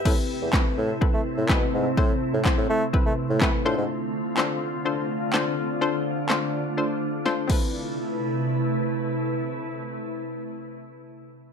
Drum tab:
CC |x-------|--------|--------|-------x|
CP |--x---x-|--x---x-|--x---x-|--x-----|
SD |--o---o-|--o---o-|--o---o-|--o---o-|
BD |o-o-o-o-|o-o-o-o-|--------|-------o|

CC |--------|--------|
CP |--------|--------|
SD |--------|--------|
BD |--------|--------|